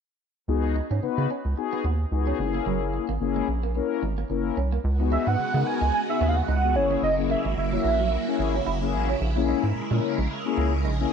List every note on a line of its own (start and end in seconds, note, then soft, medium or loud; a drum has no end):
0.48 0.81 C#2 medium
0.48 0.75 B3 loud
0.48 0.76 D#4 medium
0.48 0.76 F#4 medium
0.48 0.76 G#4 loud
0.64 muted clean electric guitar stroke soft
0.76 0.86 D#4 medium
0.91 1.00 G#2 medium
0.91 0.99 C#4 medium
1.02 1.09 C#3 soft
1.02 1.30 B3 medium
1.02 1.30 D#4 medium
1.02 1.30 F#4 medium
1.02 1.30 B4 loud
1.02 muted clean electric guitar stroke soft
1.18 1.27 C#3 loud
1.18 1.26 B3 medium
1.30 1.40 C#4 medium
1.45 1.54 C#2 medium
1.57 1.84 B3 medium
1.57 1.84 D#4 medium
1.57 1.85 F#4 medium
1.57 1.85 G#4 loud
1.57 muted clean electric guitar stroke soft
1.73 1.80 B3 medium
1.84 2.05 D#2 medium
1.84 1.95 B3 medium
2.11 2.33 C#2 medium
2.11 2.39 B3 medium
2.11 2.39 D#4 medium
2.11 2.39 F#4 medium
2.11 2.38 G#4 loud
2.27 2.35 C#4 medium
2.39 2.60 F#1 loud
2.39 2.46 G#3 medium
2.39 3.06 C#4 medium
2.39 3.06 E4 medium
2.39 3.06 G#4 loud
2.39 muted clean electric guitar stroke soft
2.45 3.09 A#3 medium
2.55 2.62 A#3 medium
2.66 2.99 F#1 loud
2.66 2.76 F#3 medium
2.94 muted clean electric guitar stroke soft
3.09 3.18 G#1 medium
3.09 3.17 A#3 medium
3.20 3.42 F#1 medium
3.20 3.48 A#3 loud
3.20 3.48 C#4 medium
3.20 3.48 E4 medium
3.20 3.48 G#4 loud
3.36 3.44 G#3 medium
3.48 3.81 A#1 medium
3.48 muted clean electric guitar stroke soft
3.63 3.71 A#3 medium
3.75 4.03 A#3 medium
3.75 4.03 C#4 medium
3.75 4.03 E4 medium
3.75 4.03 A#4 loud
3.75 muted clean electric guitar stroke soft
4.03 4.24 G#1 medium
4.03 4.13 G#3 medium
4.18 4.26 A#3 medium
4.29 4.51 F#1 medium
4.29 4.57 A#3 medium
4.29 4.57 C#4 medium
4.29 4.57 E4 medium
4.29 4.58 A#4 loud
4.29 muted clean electric guitar stroke soft
4.57 4.78 C2 loud
4.57 4.67 C#4 medium
4.72 4.80 A#3 medium
4.84 5.17 C#2 loud
4.84 11.13 C#3 medium
4.84 6.73 G#3 medium
4.84 6.73 B3 medium
4.84 6.73 F#4 medium
4.99 5.27 B3 medium
4.99 5.27 D#4 medium
4.99 5.27 F#4 medium
4.99 5.27 G#4 medium
4.99 muted clean electric guitar stroke soft
5.12 5.22 D#4 medium
5.12 5.29 E5 loud
5.27 5.36 G#2 medium
5.27 5.35 B3 medium
5.27 5.68 F#5 loud
5.39 5.45 C#3 soft
5.54 5.63 C#3 loud
5.54 5.62 G#3 medium
5.54 5.81 B3 medium
5.54 5.82 D#4 medium
5.54 5.82 F#4 medium
5.54 5.82 A#4 medium
5.66 5.93 G#5 loud
5.66 muted clean electric guitar stroke soft
5.82 5.91 C#2 loud
5.82 5.89 G#3 medium
5.94 6.01 G#5 loud
6.08 6.36 B3 medium
6.08 6.36 D#4 medium
6.08 6.36 F#4 medium
6.08 6.36 G#4 medium
6.08 6.30 E5 loud
6.21 6.42 D#2 loud
6.21 6.31 B3 medium
6.29 6.38 F5 medium
6.36 6.77 F#5 loud
6.48 6.77 C#2 medium
6.48 6.58 D#4 medium
6.63 6.75 B3 medium
6.63 6.75 D#4 medium
6.63 6.76 F#4 medium
6.63 6.75 G#4 medium
6.75 6.96 F#1 loud
6.75 9.18 F#3 medium
6.75 7.09 A#3 medium
6.75 9.18 A#3 medium
6.75 7.09 C#4 medium
6.75 11.08 E4 medium
6.75 7.09 E4 medium
6.75 7.09 G#4 medium
6.75 7.03 C#5 loud
6.75 muted clean electric guitar stroke soft
6.91 6.99 C#4 medium
7.02 7.35 F#1 loud
7.02 7.15 D#5 loud
7.18 7.45 A#3 medium
7.18 7.45 C#4 medium
7.18 7.45 E4 medium
7.18 7.46 G#4 medium
7.18 muted clean electric guitar stroke soft
7.30 7.40 A#3 medium
7.30 7.56 E5 medium
7.45 7.54 G#1 medium
7.45 7.53 G#3 medium
7.57 7.78 F#1 medium
7.57 8.63 E5 medium
7.72 7.80 F#3 medium
7.72 8.00 A#3 medium
7.72 8.00 C#4 medium
7.72 8.00 E4 medium
7.72 8.00 F#4 medium
7.84 8.17 A#1 medium
7.84 muted clean electric guitar stroke soft
8.00 8.08 F#3 medium
8.12 8.22 A#3 medium
8.27 8.54 A#3 medium
8.27 8.54 C#4 medium
8.27 8.55 E4 medium
8.27 8.55 G#4 loud
8.39 8.60 G#1 medium
8.39 muted clean electric guitar stroke soft
8.55 8.62 C#4 medium
8.67 8.95 F#1 medium
8.67 8.76 E4 medium
8.81 9.09 A#3 medium
8.81 9.09 C#4 medium
8.81 9.09 E4 medium
8.81 9.09 G#4 loud
8.81 muted clean electric guitar stroke soft
8.94 9.15 A1 loud
9.09 9.17 C#4 medium
9.21 9.54 A#1 loud
9.21 11.10 G#3 medium
9.21 11.13 A#4 medium
9.36 9.63 A#3 loud
9.36 9.64 C#4 medium
9.36 9.64 E4 loud
9.36 9.64 G#4 loud
9.36 muted clean electric guitar stroke soft
9.48 9.58 D#4 medium
9.63 9.73 G#2 medium
9.63 9.71 A#3 medium
9.76 9.82 A#2 medium
9.91 10.00 A#2 loud
9.91 9.99 G#3 medium
9.91 10.18 A#3 medium
9.91 10.18 C#4 medium
9.91 10.18 E4 medium
9.91 10.18 A#4 medium
10.03 muted clean electric guitar stroke soft
10.18 10.27 A#1 loud
10.18 10.26 G#3 medium
10.45 10.73 A#3 medium
10.45 10.73 C#4 medium
10.45 10.73 E4 medium
10.45 10.73 G#4 loud
10.57 10.86 C#2 medium
10.57 10.67 A#3 medium
10.85 11.05 A#1 medium
10.85 10.95 D#4 medium
10.99 11.12 A#3 medium
10.99 11.11 C#4 medium
10.99 11.12 E4 medium
10.99 11.12 G#4 loud